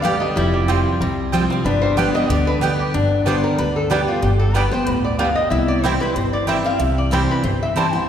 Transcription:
Already playing: D2 G3 D4 G4
0.02 D3 G3 B3 G4 D5 F5 G5
0.20 D4 D#5
0.36 F1 F3 G3 E4 G4
0.54 G4
0.68 F3 G3 C4 F4 C5 G5
1.00 C2 C3 G3
1.32 F3 G3 C4 F4 C5 G5
1.50 C4 F4
1.64 G1 G2 B3 D4 B4
1.82 G3 C5
1.97 D3 G3 B3 G4 D5 G5
2.14 B3 D4 G4 D#5
2.29 D2 D3 G4 D5
2.47 D4 B4
2.61 D3 G3 B3 G4 D5 G5
2.79 G4
2.94 G1 G2 D4
3.26 D3 G3 B3 D4 G4 C5 D5 G5
3.44 A#4
3.58 D2 D3 B4
3.76 A4
3.90 D3 G3 B3 D4 G4 D5 G5
4.08 F4
4.22 G1 G2 G4
4.39 A4
4.54 D3 G3 B3 D4 G4 B4 D5 G5
4.71 B3 G4 C5
4.87 D2 A2 B4
5.05 D5
5.19 B2 G3 B3 D4 G4 D5 F5 G5
5.35 D#5
5.50 C2 C3 E4 E5
5.68 D5
5.83 E3 G3 C4 E4 C5 G5
6.00 C4 E4 B4
6.16 G1 G2 C5
6.33 D5
6.47 E3 G3 C4 E4 C5 E5 G5
6.64 C4 E4 F5
6.79 C2 C3 E5
6.98 D5
7.11 E3 G3 C4 E4 C5 G5
7.31 B4
7.44 G1 G2 C5
7.63 E5
7.76 E3 G3 C4 E4 C5 G5 A5
7.93 C4 E4 F#5

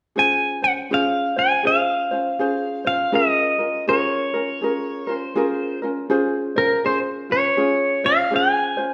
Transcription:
0.16 C#4 F4 G#4 C5 G#5
0.62 C#4 C5 F#5
0.91 C#4 F4 G#4 C5 F5
1.36 C#4 F4 C5 G#5
1.63 C#4 F4 G#4 C5 F5
2.11 C#4 F4 C5
2.39 C#4 F4 G#4 C5
2.85 C#4 F4 C5 F5
3.12 C#4 F4 G#4 A#4 D#5
3.59 C#4 F4 A#4
3.87 C#4 F4 G#4 A#4 C#5
4.34 C#4 F4 A#4
4.61 C#4 F4 G#4 A#4
5.07 C#4 F4 A#4 C5
5.35 C#4 F4 G#4 A#4
5.82 C#4 F4 A#4
6.10 C#4 F4 G#4 C5
6.56 C#4 F4 A#4 C5
6.84 C#4 F4 G#4 C5
7.30 C#4 F4 C#5
7.57 C#4 F4 G#4
8.04 C#4 F4 C5 F5
8.31 C#4 F4 G#4 C5
8.36 G#5
8.77 C#4 F4 C5

